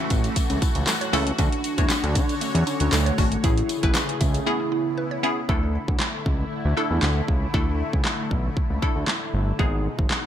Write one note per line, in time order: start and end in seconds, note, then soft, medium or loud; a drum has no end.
0.00 1.37 E3 medium
0.00 0.41 A3 medium
0.00 1.37 A3 medium
0.00 0.41 C#4 medium
0.00 0.62 C#4 loud
0.00 0.41 E4 medium
0.00 0.41 F#4 loud
0.00 3.40 F#4 loud
0.10 0.30 A1 loud
0.10 0.19 E5 loud
0.10 kick medium
0.10 closed hi-hat medium
0.10 tambourine soft
0.24 closed hi-hat soft
0.24 tambourine soft
0.36 0.44 A3 medium
0.36 kick medium
0.36 closed hi-hat medium
0.36 tambourine medium
0.50 0.59 C#2 medium
0.50 0.57 C#4 medium
0.50 closed hi-hat medium
0.50 tambourine soft
0.62 0.70 E4 medium
0.62 kick medium
0.62 closed hi-hat medium
0.62 tambourine medium
0.75 0.84 C#2 medium
0.75 closed hi-hat medium
0.75 tambourine soft
0.87 0.96 A4 loud
0.87 snare loud
0.87 clap loud
0.87 closed hi-hat medium
0.87 tambourine medium
1.01 1.08 C#5 medium
1.01 closed hi-hat medium
1.13 1.32 C#2 loud
1.13 1.31 A3 medium
1.13 1.31 C#4 medium
1.13 1.31 E4 medium
1.13 1.31 A4 loud
1.13 1.21 E5 loud
1.13 open hi-hat medium
1.13 tambourine medium
1.27 closed hi-hat medium
1.38 1.49 D2 loud
1.38 3.42 D3 medium
1.38 1.64 A3 medium
1.38 1.47 A3 medium
1.38 1.65 C#4 medium
1.38 1.65 D4 medium
1.38 2.12 D4 loud
1.38 1.65 F#4 medium
1.38 3.42 C#5 medium
1.38 kick loud
1.38 closed hi-hat medium
1.38 tambourine soft
1.52 closed hi-hat soft
1.64 closed hi-hat medium
1.64 tambourine soft
1.78 1.87 E2 medium
1.78 2.46 A3 medium
1.78 2.46 D4 medium
1.78 2.46 F#4 medium
1.78 2.46 C#5 medium
1.78 kick medium
1.78 closed hi-hat medium
1.78 tambourine soft
1.89 snare medium
1.89 clap loud
1.89 closed hi-hat loud
1.89 tambourine medium
2.04 2.17 D2 loud
2.04 closed hi-hat soft
2.15 2.35 D3 loud
2.15 2.40 D4 loud
2.15 2.24 D5 loud
2.15 kick medium
2.15 closed hi-hat medium
2.15 tambourine soft
2.29 closed hi-hat soft
2.29 tambourine soft
2.41 2.49 A3 medium
2.41 2.65 C#4 loud
2.41 closed hi-hat medium
2.41 tambourine medium
2.55 2.64 E2 loud
2.55 2.62 C#4 medium
2.55 closed hi-hat medium
2.67 2.94 C#4 loud
2.67 2.75 D4 medium
2.67 closed hi-hat medium
2.67 tambourine medium
2.80 2.90 D2 medium
2.80 closed hi-hat medium
2.80 tambourine soft
2.92 3.12 D2 loud
2.92 3.43 A3 loud
2.92 3.01 A4 loud
2.92 snare loud
2.92 clap loud
2.92 closed hi-hat medium
2.92 tambourine medium
3.06 3.13 C#5 medium
3.06 closed hi-hat medium
3.18 3.37 G#1 loud
3.18 3.36 A3 medium
3.18 3.36 C#4 medium
3.18 3.36 D4 medium
3.18 3.36 F#4 medium
3.18 3.26 D5 medium
3.18 kick loud
3.18 open hi-hat medium
3.18 tambourine medium
3.32 closed hi-hat medium
3.44 3.63 A1 loud
3.44 5.47 C#3 medium
3.44 3.70 A3 medium
3.44 3.52 A3 medium
3.44 4.46 A3 medium
3.44 3.70 C#4 medium
3.44 4.22 E4 loud
3.44 3.70 E4 medium
3.44 4.46 G#4 medium
3.44 3.70 G#4 medium
3.44 kick loud
3.44 closed hi-hat medium
3.44 tambourine soft
3.58 closed hi-hat soft
3.69 closed hi-hat medium
3.69 tambourine soft
3.83 3.92 A1 loud
3.83 4.46 A3 medium
3.83 4.45 C#4 medium
3.83 4.45 E4 medium
3.83 4.47 B4 medium
3.83 kick medium
3.83 closed hi-hat medium
3.94 snare medium
3.94 clap loud
3.94 closed hi-hat loud
3.94 tambourine medium
4.09 closed hi-hat medium
4.20 4.40 C#2 medium
4.20 4.48 C#4 loud
4.20 4.29 E5 loud
4.20 kick medium
4.20 closed hi-hat medium
4.20 tambourine soft
4.34 closed hi-hat medium
4.34 tambourine soft
4.46 5.48 B3 medium
4.46 5.09 B3 medium
4.46 4.55 B3 medium
4.46 5.09 C#4 medium
4.46 5.48 E4 medium
4.46 5.23 E4 loud
4.46 5.09 E4 medium
4.46 5.09 G#4 medium
4.60 4.67 C#4 medium
4.72 4.80 E4 medium
4.98 5.06 B4 medium
5.11 5.19 C#5 medium
5.23 5.41 B3 loud
5.23 5.41 C#4 medium
5.23 5.41 E4 medium
5.23 5.41 G#4 loud
5.23 5.32 E5 medium
5.49 5.78 D2 loud
5.49 9.55 D3 medium
5.49 6.18 A3 medium
5.49 9.55 A3 medium
5.49 6.18 D4 medium
5.49 9.55 E4 medium
5.49 6.18 E4 medium
5.49 6.18 A4 loud
5.49 kick loud
5.88 5.97 D2 medium
5.88 kick medium
5.99 snare medium
5.99 clap loud
6.26 6.45 C#2 medium
6.26 kick medium
6.65 6.74 D2 loud
6.77 7.28 A3 medium
6.77 7.29 D4 medium
6.77 7.29 E4 medium
6.77 7.29 A4 medium
6.91 7.00 E2 medium
7.02 7.22 D2 medium
7.02 snare medium
7.02 clap loud
7.28 7.47 C#2 medium
7.28 kick medium
7.54 7.83 D2 loud
7.54 8.23 A3 medium
7.54 8.23 D4 medium
7.54 8.23 E4 medium
7.54 8.23 A4 medium
7.54 kick loud
7.93 8.02 C#2 medium
7.93 kick medium
8.04 snare medium
8.04 clap loud
8.31 8.50 B1 medium
8.31 kick medium
8.57 kick medium
8.70 8.79 C#2 medium
8.82 9.34 A3 medium
8.82 9.34 D4 medium
8.82 9.34 E4 medium
8.82 9.34 A4 medium
8.82 kick medium
8.96 9.05 D2 medium
9.07 snare loud
9.07 clap loud
9.34 9.53 G1 loud
9.59 9.88 G#1 loud
9.59 10.26 B2 medium
9.59 10.26 G#3 medium
9.59 10.26 B3 medium
9.59 10.26 D#4 medium
9.59 10.26 G#4 loud
9.59 kick loud
9.99 10.08 G#1 medium
9.99 kick medium
10.10 snare medium
10.10 clap loud